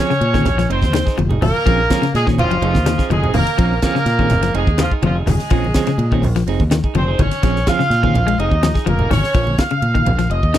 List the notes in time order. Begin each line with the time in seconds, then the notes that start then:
Already playing: F3 C4 C#4 G#4 C#5
0.00 C#4
0.10 C#3, snare
0.21 A#2, ride bell
0.33 D#3 C4 C#4 G#4, kick, snare, high conga
0.45 A#1, snare, ride bell, low conga
0.58 F3, snare, ride bell
0.69 F1 C4 D#4 C5, muted clean electric guitar stroke, ride bell
0.82 D#2, kick, snare, high conga
0.93 D#3, snare, ride bell, high conga
1.06 D#4 G#4, kick, snare
1.18 F1 F3, ride bell, high conga
1.29 D#4 G#4, low conga
1.42 F1 F3 A#3 A#4, open hi-hat, high conga, low conga
1.66 A#1 F3 C4 C#4 G#4, kick, ride bell
1.90 F3 C4 C#4 G#4, kick, snare, ride bell, high conga
2.02 C#3, snare, ride bell
2.14 A#2 G#3 G#4, snare, ride bell
2.26 D#3 C4 C#4 G#4, kick, snare
2.38 F#1 F3 F4, ride bell, low conga
2.51 F3, ride bell
2.62 F1 F3 C4 D#4 G#4, ride bell
2.74 D#2, kick, snare, high conga
2.86 D#3, snare, ride bell, high conga
2.98 C4 D#4 G#4, kick, snare
3.10 F1 F3 G#3 G#4, ride bell, high conga
3.23 C4 D#4 G#4, low conga
3.34 F1 D#3 A#3 A#4, open hi-hat, high conga, low conga
3.46 ride bell
3.58 A#1 F3 C4 C#4, muted clean electric guitar stroke, kick, ride bell
3.82 F3 A#3 C4 C#4 G#4 A#4, kick, snare, ride bell, high conga
3.95 C#3, snare
4.06 A#2, snare, ride bell
4.19 D#3 C4 C#4 G#4, kick
4.30 F#1, snare, ride bell, low conga
4.43 F3, snare, ride bell
4.54 F1 G#3 C4 D#4 G#4, ride bell
4.67 D#2, kick
4.78 D#3 F3, snare, ride bell, high conga
4.82 F4
4.92 D#4 G#4, kick
5.02 F1 F3 F4, ride bell, high conga
5.15 D#4 G#4
5.26 F1 D#3 G#3 G#4, snare, open hi-hat, high conga, low conga
5.39 snare
5.50 A#1 F3 C4 C#4 G#4, kick, ride bell
5.64 high conga
5.74 F3 C4 C#4 G#4, kick, snare, ride bell, high conga
5.87 C#3, snare, ride bell
5.98 A#2, ride bell
6.12 D#3 C4 C#4 G#4, kick
6.22 A#1, open hi-hat, low conga
6.36 F3, snare, ride bell
6.46 F1 C4 D#4 G#4, ride bell
6.60 D#2, kick, high conga
6.71 D#3, snare, ride bell, high conga
6.84 D#4 G#4, kick
6.95 F1 F3 C4 C5, ride bell, high conga
7.08 D#4 G#4
7.19 G#1 D#3 C#4 C#5, kick, ride bell, high conga, low conga
7.31 snare, ride bell
7.43 A#1 F3 C4 C#4 G#4, kick, snare, ride bell
7.56 snare
7.67 F3 C4 C#4 F4 G#4 F5, kick, snare, ride bell, high conga
7.79 C#3, snare
7.90 A#2, snare, ride bell
8.03 D#3 C4 C#4 G#4, kick, high conga
8.14 A#1, ride bell, low conga
8.27 G#3, ride bell
8.38 F1 C4 D#4 G#4 D#5, ride bell
8.51 D#2, kick
8.63 F3, snare, ride bell, high conga
8.74 D#4 G#4, kick, snare
8.86 F1 F3 A#3 A#4, ride bell, high conga
8.99 D#4 G#4, low conga
9.10 G#1 D#3 C#4 C#5, snare, open hi-hat, high conga, low conga
9.24 snare
9.34 A#1 F3, kick, ride bell
9.47 high conga
9.58 F5, kick, snare, ride bell, high conga
9.70 C#3, ride bell
9.82 A#2, ride bell
9.95 D#3, kick, high conga
10.06 A#1, ride bell, low conga
10.19 F3, snare, ride bell
10.30 F1 D#5, ride bell
10.43 D#2, kick
10.54 D#3, snare, ride bell, high conga